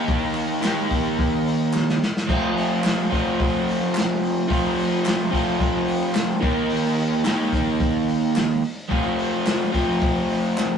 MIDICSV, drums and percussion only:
0, 0, Header, 1, 2, 480
1, 0, Start_track
1, 0, Tempo, 552486
1, 66, Time_signature, 4, 2, 24, 8
1, 9365, End_track
2, 0, Start_track
2, 0, Title_t, "Drums"
2, 72, Note_on_c, 9, 36, 113
2, 76, Note_on_c, 9, 46, 87
2, 158, Note_off_c, 9, 36, 0
2, 163, Note_off_c, 9, 46, 0
2, 302, Note_on_c, 9, 39, 67
2, 317, Note_on_c, 9, 46, 63
2, 389, Note_off_c, 9, 39, 0
2, 404, Note_off_c, 9, 46, 0
2, 546, Note_on_c, 9, 39, 91
2, 553, Note_on_c, 9, 46, 90
2, 563, Note_on_c, 9, 38, 115
2, 633, Note_off_c, 9, 39, 0
2, 640, Note_off_c, 9, 46, 0
2, 650, Note_off_c, 9, 38, 0
2, 790, Note_on_c, 9, 36, 83
2, 796, Note_on_c, 9, 46, 65
2, 877, Note_off_c, 9, 36, 0
2, 883, Note_off_c, 9, 46, 0
2, 1032, Note_on_c, 9, 36, 110
2, 1040, Note_on_c, 9, 46, 86
2, 1118, Note_off_c, 9, 36, 0
2, 1127, Note_off_c, 9, 46, 0
2, 1278, Note_on_c, 9, 46, 64
2, 1365, Note_off_c, 9, 46, 0
2, 1506, Note_on_c, 9, 39, 91
2, 1523, Note_on_c, 9, 38, 65
2, 1593, Note_off_c, 9, 39, 0
2, 1610, Note_off_c, 9, 38, 0
2, 1643, Note_on_c, 9, 38, 74
2, 1729, Note_off_c, 9, 38, 0
2, 1761, Note_on_c, 9, 38, 92
2, 1848, Note_off_c, 9, 38, 0
2, 1885, Note_on_c, 9, 38, 97
2, 1972, Note_off_c, 9, 38, 0
2, 1989, Note_on_c, 9, 36, 110
2, 1994, Note_on_c, 9, 49, 105
2, 2076, Note_off_c, 9, 36, 0
2, 2081, Note_off_c, 9, 49, 0
2, 2234, Note_on_c, 9, 46, 66
2, 2320, Note_off_c, 9, 46, 0
2, 2466, Note_on_c, 9, 39, 97
2, 2476, Note_on_c, 9, 46, 82
2, 2487, Note_on_c, 9, 38, 114
2, 2553, Note_off_c, 9, 39, 0
2, 2563, Note_off_c, 9, 46, 0
2, 2573, Note_off_c, 9, 38, 0
2, 2713, Note_on_c, 9, 36, 82
2, 2724, Note_on_c, 9, 46, 61
2, 2800, Note_off_c, 9, 36, 0
2, 2811, Note_off_c, 9, 46, 0
2, 2953, Note_on_c, 9, 36, 121
2, 2961, Note_on_c, 9, 46, 82
2, 3040, Note_off_c, 9, 36, 0
2, 3048, Note_off_c, 9, 46, 0
2, 3205, Note_on_c, 9, 46, 56
2, 3292, Note_off_c, 9, 46, 0
2, 3431, Note_on_c, 9, 39, 102
2, 3445, Note_on_c, 9, 46, 75
2, 3455, Note_on_c, 9, 38, 111
2, 3518, Note_off_c, 9, 39, 0
2, 3532, Note_off_c, 9, 46, 0
2, 3542, Note_off_c, 9, 38, 0
2, 3680, Note_on_c, 9, 46, 64
2, 3767, Note_off_c, 9, 46, 0
2, 3912, Note_on_c, 9, 36, 118
2, 3920, Note_on_c, 9, 46, 87
2, 3999, Note_off_c, 9, 36, 0
2, 4007, Note_off_c, 9, 46, 0
2, 4155, Note_on_c, 9, 46, 65
2, 4242, Note_off_c, 9, 46, 0
2, 4388, Note_on_c, 9, 39, 101
2, 4400, Note_on_c, 9, 46, 84
2, 4411, Note_on_c, 9, 38, 112
2, 4475, Note_off_c, 9, 39, 0
2, 4487, Note_off_c, 9, 46, 0
2, 4498, Note_off_c, 9, 38, 0
2, 4632, Note_on_c, 9, 36, 84
2, 4643, Note_on_c, 9, 46, 66
2, 4719, Note_off_c, 9, 36, 0
2, 4730, Note_off_c, 9, 46, 0
2, 4867, Note_on_c, 9, 36, 117
2, 4873, Note_on_c, 9, 46, 89
2, 4954, Note_off_c, 9, 36, 0
2, 4960, Note_off_c, 9, 46, 0
2, 5107, Note_on_c, 9, 46, 65
2, 5194, Note_off_c, 9, 46, 0
2, 5339, Note_on_c, 9, 46, 82
2, 5341, Note_on_c, 9, 39, 94
2, 5349, Note_on_c, 9, 38, 116
2, 5426, Note_off_c, 9, 46, 0
2, 5428, Note_off_c, 9, 39, 0
2, 5436, Note_off_c, 9, 38, 0
2, 5582, Note_on_c, 9, 36, 114
2, 5585, Note_on_c, 9, 46, 64
2, 5669, Note_off_c, 9, 36, 0
2, 5672, Note_off_c, 9, 46, 0
2, 5818, Note_on_c, 9, 46, 91
2, 5905, Note_off_c, 9, 46, 0
2, 6064, Note_on_c, 9, 46, 72
2, 6151, Note_off_c, 9, 46, 0
2, 6298, Note_on_c, 9, 39, 100
2, 6302, Note_on_c, 9, 46, 87
2, 6313, Note_on_c, 9, 38, 121
2, 6385, Note_off_c, 9, 39, 0
2, 6389, Note_off_c, 9, 46, 0
2, 6399, Note_off_c, 9, 38, 0
2, 6538, Note_on_c, 9, 36, 91
2, 6538, Note_on_c, 9, 46, 66
2, 6625, Note_off_c, 9, 36, 0
2, 6625, Note_off_c, 9, 46, 0
2, 6776, Note_on_c, 9, 46, 81
2, 6780, Note_on_c, 9, 36, 114
2, 6863, Note_off_c, 9, 46, 0
2, 6867, Note_off_c, 9, 36, 0
2, 7016, Note_on_c, 9, 46, 58
2, 7103, Note_off_c, 9, 46, 0
2, 7261, Note_on_c, 9, 39, 97
2, 7262, Note_on_c, 9, 46, 74
2, 7273, Note_on_c, 9, 38, 113
2, 7348, Note_off_c, 9, 39, 0
2, 7349, Note_off_c, 9, 46, 0
2, 7359, Note_off_c, 9, 38, 0
2, 7499, Note_on_c, 9, 46, 66
2, 7586, Note_off_c, 9, 46, 0
2, 7737, Note_on_c, 9, 46, 75
2, 7741, Note_on_c, 9, 36, 121
2, 7824, Note_off_c, 9, 46, 0
2, 7828, Note_off_c, 9, 36, 0
2, 7980, Note_on_c, 9, 46, 61
2, 8067, Note_off_c, 9, 46, 0
2, 8217, Note_on_c, 9, 46, 85
2, 8223, Note_on_c, 9, 39, 97
2, 8227, Note_on_c, 9, 38, 109
2, 8303, Note_off_c, 9, 46, 0
2, 8310, Note_off_c, 9, 39, 0
2, 8314, Note_off_c, 9, 38, 0
2, 8463, Note_on_c, 9, 46, 66
2, 8465, Note_on_c, 9, 36, 85
2, 8550, Note_off_c, 9, 46, 0
2, 8552, Note_off_c, 9, 36, 0
2, 8698, Note_on_c, 9, 46, 91
2, 8704, Note_on_c, 9, 36, 116
2, 8785, Note_off_c, 9, 46, 0
2, 8791, Note_off_c, 9, 36, 0
2, 8939, Note_on_c, 9, 46, 64
2, 9026, Note_off_c, 9, 46, 0
2, 9188, Note_on_c, 9, 39, 105
2, 9193, Note_on_c, 9, 38, 65
2, 9275, Note_off_c, 9, 39, 0
2, 9280, Note_off_c, 9, 38, 0
2, 9365, End_track
0, 0, End_of_file